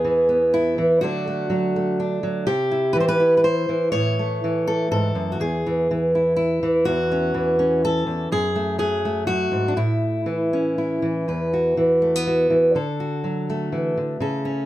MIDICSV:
0, 0, Header, 1, 2, 480
1, 0, Start_track
1, 0, Tempo, 486224
1, 1016, Time_signature, 3, 2, 24, 8
1, 9648, Tempo, 499584
1, 11568, Tempo, 488599
1, 14403, End_track
2, 0, Start_track
2, 0, Title_t, "Steel-string acoustic guitar"
2, 0, Program_c, 0, 25
2, 0, Note_on_c, 0, 40, 65
2, 0, Note_on_c, 0, 59, 41
2, 0, Note_on_c, 0, 68, 84
2, 44, Note_on_c, 0, 52, 54
2, 273, Note_off_c, 0, 59, 0
2, 285, Note_on_c, 0, 59, 43
2, 530, Note_on_c, 0, 64, 84
2, 759, Note_off_c, 0, 52, 0
2, 770, Note_off_c, 0, 68, 0
2, 771, Note_on_c, 0, 52, 57
2, 984, Note_off_c, 0, 59, 0
2, 997, Note_on_c, 0, 66, 98
2, 1008, Note_on_c, 0, 50, 72
2, 1010, Note_off_c, 0, 52, 0
2, 1013, Note_on_c, 0, 54, 50
2, 1015, Note_off_c, 0, 64, 0
2, 1017, Note_off_c, 0, 40, 0
2, 1022, Note_on_c, 0, 57, 48
2, 1030, Note_on_c, 0, 62, 48
2, 1246, Note_off_c, 0, 57, 0
2, 1258, Note_on_c, 0, 57, 41
2, 1466, Note_off_c, 0, 54, 0
2, 1478, Note_on_c, 0, 54, 61
2, 1727, Note_off_c, 0, 57, 0
2, 1738, Note_on_c, 0, 57, 43
2, 1959, Note_off_c, 0, 62, 0
2, 1962, Note_off_c, 0, 66, 0
2, 1971, Note_on_c, 0, 62, 48
2, 2191, Note_off_c, 0, 54, 0
2, 2203, Note_on_c, 0, 54, 65
2, 2416, Note_off_c, 0, 50, 0
2, 2416, Note_off_c, 0, 54, 0
2, 2419, Note_off_c, 0, 62, 0
2, 2435, Note_on_c, 0, 67, 90
2, 2440, Note_on_c, 0, 48, 74
2, 2450, Note_off_c, 0, 57, 0
2, 2680, Note_on_c, 0, 64, 47
2, 2892, Note_on_c, 0, 71, 90
2, 2916, Note_on_c, 0, 52, 64
2, 2919, Note_off_c, 0, 48, 0
2, 2961, Note_off_c, 0, 71, 0
2, 2965, Note_on_c, 0, 72, 74
2, 3041, Note_off_c, 0, 72, 0
2, 3045, Note_on_c, 0, 71, 103
2, 3153, Note_off_c, 0, 64, 0
2, 3156, Note_on_c, 0, 64, 44
2, 3317, Note_off_c, 0, 71, 0
2, 3329, Note_on_c, 0, 71, 69
2, 3392, Note_off_c, 0, 67, 0
2, 3393, Note_off_c, 0, 71, 0
2, 3397, Note_on_c, 0, 72, 94
2, 3638, Note_off_c, 0, 52, 0
2, 3642, Note_on_c, 0, 52, 63
2, 3863, Note_off_c, 0, 72, 0
2, 3867, Note_on_c, 0, 73, 100
2, 3880, Note_on_c, 0, 45, 72
2, 4133, Note_off_c, 0, 64, 0
2, 4137, Note_on_c, 0, 57, 43
2, 4378, Note_off_c, 0, 52, 0
2, 4382, Note_on_c, 0, 52, 59
2, 4615, Note_on_c, 0, 69, 83
2, 4838, Note_off_c, 0, 69, 0
2, 4846, Note_off_c, 0, 45, 0
2, 4850, Note_on_c, 0, 44, 60
2, 4853, Note_on_c, 0, 69, 81
2, 5082, Note_off_c, 0, 44, 0
2, 5086, Note_on_c, 0, 42, 61
2, 5088, Note_off_c, 0, 73, 0
2, 5251, Note_on_c, 0, 66, 53
2, 5327, Note_off_c, 0, 42, 0
2, 5330, Note_off_c, 0, 66, 0
2, 5331, Note_on_c, 0, 40, 64
2, 5334, Note_off_c, 0, 69, 0
2, 5338, Note_on_c, 0, 68, 78
2, 5348, Note_off_c, 0, 57, 0
2, 5589, Note_off_c, 0, 52, 0
2, 5592, Note_on_c, 0, 52, 44
2, 5829, Note_off_c, 0, 52, 0
2, 5833, Note_on_c, 0, 52, 60
2, 6063, Note_off_c, 0, 68, 0
2, 6072, Note_on_c, 0, 64, 43
2, 6271, Note_off_c, 0, 64, 0
2, 6283, Note_on_c, 0, 64, 81
2, 6531, Note_off_c, 0, 52, 0
2, 6543, Note_on_c, 0, 52, 65
2, 6765, Note_on_c, 0, 66, 101
2, 6771, Note_off_c, 0, 64, 0
2, 6773, Note_off_c, 0, 40, 0
2, 6784, Note_on_c, 0, 40, 73
2, 7025, Note_on_c, 0, 61, 44
2, 7237, Note_off_c, 0, 52, 0
2, 7249, Note_on_c, 0, 52, 64
2, 7489, Note_off_c, 0, 61, 0
2, 7493, Note_on_c, 0, 61, 46
2, 7722, Note_off_c, 0, 66, 0
2, 7746, Note_on_c, 0, 69, 99
2, 7951, Note_off_c, 0, 40, 0
2, 7963, Note_on_c, 0, 40, 69
2, 8203, Note_off_c, 0, 52, 0
2, 8204, Note_off_c, 0, 40, 0
2, 8209, Note_on_c, 0, 42, 71
2, 8212, Note_off_c, 0, 69, 0
2, 8216, Note_on_c, 0, 68, 97
2, 8442, Note_off_c, 0, 61, 0
2, 8446, Note_on_c, 0, 57, 45
2, 8664, Note_off_c, 0, 68, 0
2, 8672, Note_on_c, 0, 54, 61
2, 8677, Note_on_c, 0, 68, 95
2, 8931, Note_off_c, 0, 57, 0
2, 8935, Note_on_c, 0, 57, 46
2, 9147, Note_off_c, 0, 68, 0
2, 9151, Note_on_c, 0, 66, 92
2, 9152, Note_off_c, 0, 42, 0
2, 9163, Note_on_c, 0, 42, 62
2, 9391, Note_off_c, 0, 42, 0
2, 9395, Note_on_c, 0, 44, 67
2, 9558, Note_on_c, 0, 62, 56
2, 9611, Note_off_c, 0, 54, 0
2, 9635, Note_off_c, 0, 62, 0
2, 9637, Note_off_c, 0, 44, 0
2, 9638, Note_off_c, 0, 66, 0
2, 9641, Note_on_c, 0, 45, 72
2, 9645, Note_on_c, 0, 64, 74
2, 10117, Note_on_c, 0, 52, 63
2, 10367, Note_off_c, 0, 57, 0
2, 10377, Note_on_c, 0, 61, 45
2, 10604, Note_off_c, 0, 64, 0
2, 10616, Note_on_c, 0, 64, 47
2, 10837, Note_off_c, 0, 52, 0
2, 10849, Note_on_c, 0, 52, 64
2, 11060, Note_off_c, 0, 45, 0
2, 11066, Note_off_c, 0, 64, 0
2, 11069, Note_off_c, 0, 61, 0
2, 11093, Note_on_c, 0, 40, 56
2, 11101, Note_on_c, 0, 71, 55
2, 11340, Note_on_c, 0, 66, 46
2, 11558, Note_off_c, 0, 52, 0
2, 11570, Note_on_c, 0, 52, 54
2, 11811, Note_on_c, 0, 57, 48
2, 11946, Note_off_c, 0, 57, 0
2, 11946, Note_on_c, 0, 59, 39
2, 12049, Note_off_c, 0, 66, 0
2, 12061, Note_on_c, 0, 66, 50
2, 12274, Note_off_c, 0, 52, 0
2, 12285, Note_on_c, 0, 52, 55
2, 12509, Note_off_c, 0, 66, 0
2, 12509, Note_off_c, 0, 71, 0
2, 12529, Note_on_c, 0, 50, 65
2, 12530, Note_off_c, 0, 52, 0
2, 12534, Note_off_c, 0, 40, 0
2, 12537, Note_on_c, 0, 69, 58
2, 12540, Note_off_c, 0, 59, 0
2, 12775, Note_on_c, 0, 66, 50
2, 13010, Note_on_c, 0, 54, 52
2, 13262, Note_on_c, 0, 57, 50
2, 13481, Note_off_c, 0, 54, 0
2, 13485, Note_on_c, 0, 52, 53
2, 13720, Note_off_c, 0, 50, 0
2, 13727, Note_off_c, 0, 52, 0
2, 13732, Note_on_c, 0, 50, 55
2, 13941, Note_off_c, 0, 66, 0
2, 13954, Note_off_c, 0, 50, 0
2, 13958, Note_on_c, 0, 49, 61
2, 13965, Note_off_c, 0, 69, 0
2, 13969, Note_on_c, 0, 69, 57
2, 14201, Note_on_c, 0, 61, 49
2, 14403, Note_off_c, 0, 49, 0
2, 14403, Note_off_c, 0, 57, 0
2, 14403, Note_off_c, 0, 61, 0
2, 14403, Note_off_c, 0, 69, 0
2, 14403, End_track
0, 0, End_of_file